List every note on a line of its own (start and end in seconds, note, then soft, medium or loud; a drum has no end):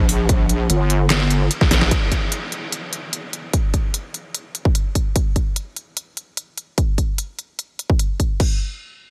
0.00 0.68 A#1 loud
0.09 open hi-hat loud
0.29 kick loud
0.29 closed hi-hat medium
0.49 closed hi-hat medium
0.70 1.49 G1 loud
0.70 closed hi-hat medium
0.90 closed hi-hat medium
1.10 snare loud
1.10 clap medium
1.10 closed hi-hat medium
1.30 closed hi-hat medium
1.51 closed hi-hat medium
1.61 kick loud
1.61 snare medium
1.71 1.90 A#1 loud
1.71 kick medium
1.71 snare medium
1.71 open hi-hat loud
1.81 snare medium
1.91 kick loud
1.91 closed hi-hat medium
2.12 kick medium
2.12 closed hi-hat medium
2.32 closed hi-hat medium
2.52 closed hi-hat soft
2.72 closed hi-hat medium
2.93 closed hi-hat medium
3.13 closed hi-hat medium
3.33 closed hi-hat soft
3.53 kick loud
3.53 closed hi-hat medium
3.74 kick medium
3.74 closed hi-hat soft
3.94 closed hi-hat medium
4.14 closed hi-hat soft
4.35 closed hi-hat medium
4.55 closed hi-hat soft
4.65 kick loud
4.75 closed hi-hat medium
4.95 kick medium
4.95 closed hi-hat soft
5.16 kick loud
5.16 closed hi-hat medium
5.36 kick medium
5.36 closed hi-hat soft
5.56 closed hi-hat medium
5.76 closed hi-hat soft
5.97 closed hi-hat medium
6.17 closed hi-hat soft
6.37 closed hi-hat medium
6.58 closed hi-hat soft
6.78 kick loud
6.78 closed hi-hat medium
6.98 kick medium
6.98 closed hi-hat soft
7.18 closed hi-hat medium
7.39 closed hi-hat soft
7.59 closed hi-hat medium
7.79 closed hi-hat soft
7.90 kick loud
7.99 closed hi-hat medium
8.20 kick medium
8.20 closed hi-hat soft
8.40 kick loud
8.40 crash medium